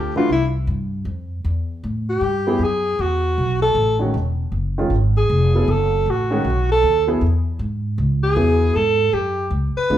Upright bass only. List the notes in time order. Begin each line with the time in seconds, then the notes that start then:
Already playing: D2
0.29 C2
0.67 G2
1.05 F2
1.44 E2
1.84 A2
2.21 G2
2.59 F#2
2.99 E2
3.38 B1
3.75 A1
4.14 E1
4.52 F#1
4.90 G#1
5.30 F1
5.68 F#1
6.06 A1
6.45 B1
6.83 D#2
7.21 E2
7.59 G#2
7.98 C#2
8.36 E2
8.76 G#2
9.13 F#2
9.51 C#2
9.76 muted upright bass stroke
9.90 D2